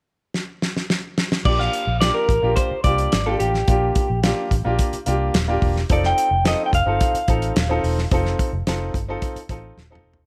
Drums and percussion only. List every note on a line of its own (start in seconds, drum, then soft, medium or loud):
0.34 snare medium
0.62 snare medium
0.77 snare medium
0.90 snare medium
1.18 snare medium
1.32 snare medium
1.45 kick loud
1.45 crash medium
1.60 snare soft
1.73 closed hi-hat medium
2.01 snare loud
2.01 closed hi-hat medium
2.29 kick medium
2.29 closed hi-hat medium
2.56 kick medium
2.56 closed hi-hat medium
2.84 kick medium
2.84 closed hi-hat medium
2.98 closed hi-hat soft
3.12 snare loud
3.12 closed hi-hat medium
3.40 closed hi-hat medium
3.54 snare soft
3.68 kick loud
3.68 closed hi-hat medium
3.95 kick medium
3.95 closed hi-hat medium
4.23 snare loud
4.23 closed hi-hat medium
4.51 kick medium
4.51 closed hi-hat medium
4.79 kick medium
4.79 closed hi-hat medium
4.93 closed hi-hat soft
5.06 closed hi-hat medium
5.34 snare loud
5.34 closed hi-hat medium
5.62 kick medium
5.62 open hi-hat soft
5.76 snare soft
5.90 kick loud
5.90 closed hi-hat medium
6.04 snare soft
6.18 closed hi-hat medium
6.45 snare medium
6.45 closed hi-hat medium
6.73 kick medium
6.73 closed hi-hat medium
7.01 kick medium
7.01 closed hi-hat medium
7.15 closed hi-hat soft
7.28 kick medium
7.28 closed hi-hat medium
7.42 closed hi-hat soft
7.56 snare loud
7.56 closed hi-hat medium
7.84 open hi-hat soft
7.98 snare soft
8.11 kick medium
8.11 closed hi-hat medium
8.26 snare soft
8.39 kick medium
8.39 closed hi-hat medium
8.67 snare medium
8.67 closed hi-hat medium
8.94 kick medium
8.94 closed hi-hat medium
9.22 kick medium
9.22 closed hi-hat medium
9.36 closed hi-hat soft
9.49 kick medium
9.49 closed hi-hat medium
9.78 snare medium
9.95 mid tom medium
10.13 floor tom medium